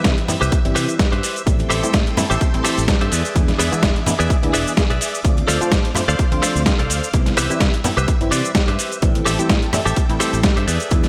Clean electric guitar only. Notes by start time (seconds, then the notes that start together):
Already playing: G4 B4 C5 E5
0.41 G4 B4 C5 E5
0.75 G4 B4 C5 E5
1.12 G4 B4 C5 E5
1.70 G4 A4 C5 E5
2.30 G4 A4 C5 E5
2.64 G4 A4 C5 E5
3.01 G4 A4 C5 E5
3.11 G#4 B4 D5 E5
3.58 G#4 B4 D5 E5
4.19 G#4 B4 D5 E5
4.53 G#4 B4 D5 E5
4.90 G#4 B4 D5 E5
5.48 A4 C5 D5 F5
6.08 A4 C5 D5 F5
6.42 A4 C5 D5 F5
6.79 A4 C5 D5 F5
7.37 G4 B4 C5 E5
7.97 G4 B4 C5 E5
8.31 G4 B4 C5 D5
8.68 G4 B4 C5 E5
9.25 G4 A4 C5 E5
9.86 G4 A4 C5 E5
10.20 G4 A4 C5 E5
10.56 G4 A4 C5 E5
10.67 G#4 B4 D5 E5